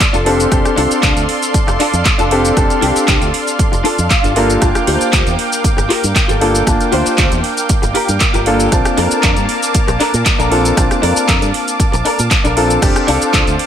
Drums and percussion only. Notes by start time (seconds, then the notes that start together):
0.00 kick, clap, closed hi-hat, cabasa
0.14 closed hi-hat, cabasa
0.26 open hi-hat
0.40 closed hi-hat, cabasa
0.52 kick, cross-stick, closed hi-hat, cabasa
0.65 cross-stick, closed hi-hat, cabasa
0.78 open hi-hat
0.91 closed hi-hat, cabasa
1.03 kick, clap, closed hi-hat, cabasa
1.17 closed hi-hat, cabasa
1.29 open hi-hat
1.42 closed hi-hat, cabasa
1.54 kick, closed hi-hat, cabasa
1.68 cross-stick, closed hi-hat, cabasa
1.80 clap, open hi-hat
1.94 closed hi-hat, cabasa
2.05 kick, clap, closed hi-hat, cabasa
2.19 closed hi-hat, cabasa
2.31 open hi-hat
2.45 closed hi-hat, cabasa
2.57 kick, cross-stick, closed hi-hat, cabasa
2.70 closed hi-hat, cabasa
2.82 open hi-hat
2.96 closed hi-hat, cabasa
3.08 kick, clap, closed hi-hat, cabasa
3.22 closed hi-hat, cabasa
3.34 open hi-hat
3.47 closed hi-hat, cabasa
3.59 kick, closed hi-hat, cabasa
3.73 closed hi-hat, cabasa
3.85 open hi-hat
3.98 closed hi-hat, cabasa
4.10 kick, clap, closed hi-hat, cabasa
4.24 closed hi-hat, cabasa
4.36 open hi-hat
4.50 closed hi-hat, cabasa
4.62 kick, cross-stick, closed hi-hat, cabasa
4.75 cross-stick, closed hi-hat, cabasa
4.87 open hi-hat
5.01 closed hi-hat, cabasa
5.13 kick, clap, closed hi-hat, cabasa
5.27 closed hi-hat, cabasa
5.39 open hi-hat
5.52 closed hi-hat, cabasa
5.64 kick, closed hi-hat, cabasa
5.78 cross-stick, closed hi-hat, cabasa
5.90 clap, open hi-hat
6.04 closed hi-hat, cabasa
6.16 kick, clap, closed hi-hat, cabasa
6.29 closed hi-hat, cabasa
6.41 open hi-hat
6.55 closed hi-hat, cabasa
6.67 kick, cross-stick, closed hi-hat, cabasa
6.81 closed hi-hat, cabasa
6.92 open hi-hat
7.06 closed hi-hat, cabasa
7.18 kick, clap, closed hi-hat, cabasa
7.32 closed hi-hat, cabasa
7.44 open hi-hat
7.57 closed hi-hat, cabasa
7.69 kick, closed hi-hat, cabasa
7.83 closed hi-hat, cabasa
7.95 open hi-hat
8.09 closed hi-hat, cabasa
8.20 kick, clap, closed hi-hat, cabasa
8.34 closed hi-hat, cabasa
8.46 open hi-hat
8.60 closed hi-hat, cabasa
8.72 kick, cross-stick, closed hi-hat, cabasa
8.85 cross-stick, closed hi-hat, cabasa
8.98 open hi-hat
9.11 closed hi-hat, cabasa
9.23 kick, clap, closed hi-hat, cabasa
9.37 closed hi-hat, cabasa
9.49 open hi-hat
9.63 closed hi-hat, cabasa
9.75 kick, closed hi-hat, cabasa
9.88 cross-stick, closed hi-hat, cabasa
10.00 clap, open hi-hat
10.14 closed hi-hat, cabasa
10.26 kick, clap, closed hi-hat, cabasa
10.40 closed hi-hat, cabasa
10.52 open hi-hat
10.65 closed hi-hat, cabasa
10.77 kick, cross-stick, closed hi-hat, cabasa
10.91 cross-stick, closed hi-hat, cabasa
11.03 open hi-hat
11.16 closed hi-hat, cabasa
11.28 kick, clap, closed hi-hat, cabasa
11.42 closed hi-hat, cabasa
11.54 open hi-hat
11.68 closed hi-hat, cabasa
11.80 kick, closed hi-hat, cabasa
11.94 closed hi-hat, cabasa
12.05 open hi-hat
12.19 closed hi-hat, cabasa
12.31 kick, clap, closed hi-hat, cabasa
12.45 closed hi-hat, cabasa
12.57 open hi-hat
12.70 closed hi-hat, cabasa
12.82 kick, cross-stick, closed hi-hat, crash, cabasa
12.96 cross-stick, closed hi-hat, cabasa
13.08 open hi-hat
13.22 closed hi-hat, cabasa
13.33 kick, clap, closed hi-hat, cabasa
13.47 closed hi-hat, cabasa
13.59 open hi-hat